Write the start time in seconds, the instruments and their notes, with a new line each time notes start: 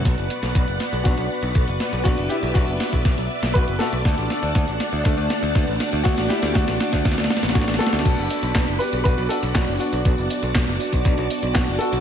Already playing: grand piano F#4 B4
0.05 picked electric bass B1, string machine B3 B4 D5 F#5, analog polysynth B3 D4 F#4 D5, kick, snare, closed hi-hat
0.18 picked electric bass F#1, closed hi-hat
0.30 closed hi-hat
0.43 picked electric bass B1, snare, closed hi-hat
0.55 picked electric bass B1, kick, closed hi-hat
0.68 picked electric bass F#1, closed hi-hat
0.80 snare, closed hi-hat
0.93 picked electric bass B1, closed hi-hat
1.04 picked electric bass B1, grand piano D4 F#4, kick, snare, closed hi-hat
1.18 picked electric bass B1, closed hi-hat
1.43 picked electric bass B1, closed hi-hat
1.55 picked electric bass B1, analog polysynth D4 F#4 C#5, kick, closed hi-hat
1.68 picked electric bass F#1, closed hi-hat
1.80 analog polysynth B3 D4 F#4, snare, closed hi-hat
1.93 picked electric bass B1, closed hi-hat
2.04 picked electric bass B1, analog polysynth B3 D4 F#4 D5, grand piano D4 F#4, string machine E5, kick, snare, closed hi-hat
2.18 picked electric bass F#1, closed hi-hat
2.29 grand piano E4 G4, closed hi-hat
2.43 picked electric bass B1, closed hi-hat
2.54 picked electric bass B1, grand piano D4 F#4, kick, closed hi-hat
2.68 picked electric bass F#1, closed hi-hat
2.80 snare, closed hi-hat
2.93 picked electric bass B1, kick, closed hi-hat
3.05 picked electric bass B1, kick, snare, closed hi-hat
3.18 picked electric bass B1, closed hi-hat
3.43 picked electric bass B1, snare, closed hi-hat
3.54 picked electric bass B1, grand piano F#4 B4, kick, closed hi-hat
3.68 picked electric bass F#1, closed hi-hat
3.79 analog polysynth B3 D4 F#4 D5, grand piano F#4 A4, snare, closed hi-hat
3.93 picked electric bass B1, closed hi-hat
4.05 picked electric bass D2, analog polysynth A3 D4 F#4 D5, string machine D4 F#5 A5, kick, snare, closed hi-hat
4.18 picked electric bass A1, closed hi-hat
4.30 snare, closed hi-hat
4.43 picked electric bass D2, closed hi-hat
4.55 picked electric bass D2, kick, snare, closed hi-hat
4.68 picked electric bass A1, closed hi-hat
4.80 snare, closed hi-hat
4.93 picked electric bass D2, closed hi-hat
5.04 picked electric bass D2, grand piano A3 D4, kick, snare, closed hi-hat
5.18 picked electric bass D2, closed hi-hat
5.30 snare
5.43 picked electric bass D2, closed hi-hat
5.55 picked electric bass D2, analog polysynth A3 D4 F#4 B4, kick, snare, closed hi-hat
5.68 picked electric bass A1, closed hi-hat
5.80 analog polysynth A3 D4 F#4 D5, snare, closed hi-hat
5.93 picked electric bass D2, closed hi-hat
6.04 picked electric bass D2, analog polysynth A3 D4 F#4 D5, grand piano D4 F#4, kick, snare, closed hi-hat
6.18 picked electric bass A1, snare, closed hi-hat
6.28 grand piano E4 G4, snare, closed hi-hat
6.43 picked electric bass D2, snare, closed hi-hat
6.54 picked electric bass D2, grand piano D4 F#4, kick, snare, closed hi-hat
6.68 picked electric bass A1, snare, closed hi-hat
6.80 snare, closed hi-hat
6.93 picked electric bass D2, kick, snare, closed hi-hat
7.05 picked electric bass D2, kick, snare, closed hi-hat
7.12 snare
7.18 picked electric bass D2, snare, closed hi-hat
7.24 snare
7.30 snare
7.37 snare
7.43 picked electric bass A1, snare, closed hi-hat
7.49 snare
7.54 picked electric bass A1, grand piano D4 F#4, kick, snare, closed hi-hat
7.62 snare
7.68 picked electric bass A1, snare, closed hi-hat
7.74 snare
7.79 analog polysynth A3 D4 F#4 D5, grand piano F#4 A4, snare, closed hi-hat
7.87 snare
7.93 picked electric bass D2, snare, closed hi-hat
7.99 snare
8.05 picked electric bass B1, analog polysynth B3 D4 F#4 D5, string machine F#4 D5 B5 D6, kick, closed hi-hat, crash, tambourine
8.18 picked electric bass F#1, tambourine
8.30 open hi-hat, tambourine
8.43 picked electric bass B1, closed hi-hat, tambourine
8.55 picked electric bass B1, kick, snare, clap, closed hi-hat, tambourine
8.68 picked electric bass F#1, closed hi-hat
8.79 grand piano G4 B4, open hi-hat, tambourine
8.93 picked electric bass B1, closed hi-hat, tambourine
9.04 picked electric bass B1, grand piano F#4 B4, kick, closed hi-hat, tambourine
9.18 picked electric bass B1, closed hi-hat
9.29 grand piano F#4 A4, open hi-hat, tambourine
9.43 picked electric bass B1, closed hi-hat, tambourine
9.54 picked electric bass B1, analog polysynth B3 D4 F#4 C#5, grand piano D4 F#4, kick, snare, clap, closed hi-hat, tambourine
9.68 picked electric bass F#1
9.79 analog polysynth B3 D4 F#4 D5, grand piano D4 F#4, open hi-hat, tambourine
9.93 picked electric bass B1, closed hi-hat, tambourine
10.05 picked electric bass B1, analog polysynth B3 D4 F#4 D5, string machine A5, kick, closed hi-hat, tambourine
10.18 picked electric bass F#1, tambourine
10.30 open hi-hat, tambourine
10.43 picked electric bass B1, closed hi-hat, tambourine
10.55 picked electric bass B1, kick, snare, clap, closed hi-hat, tambourine
10.68 picked electric bass F#1, closed hi-hat
10.80 open hi-hat, tambourine
10.93 picked electric bass B1, kick, closed hi-hat, tambourine
11.05 picked electric bass B1, kick, closed hi-hat, tambourine
11.18 picked electric bass B1, closed hi-hat
11.30 open hi-hat, tambourine
11.43 picked electric bass B1, closed hi-hat, tambourine
11.54 picked electric bass B1, grand piano D4 F#4, kick, snare, clap, closed hi-hat, tambourine
11.68 picked electric bass F#1
11.79 analog polysynth B3 D4 F#4 D5, grand piano F#4 A4, open hi-hat, tambourine
11.92 picked electric bass B1, closed hi-hat, tambourine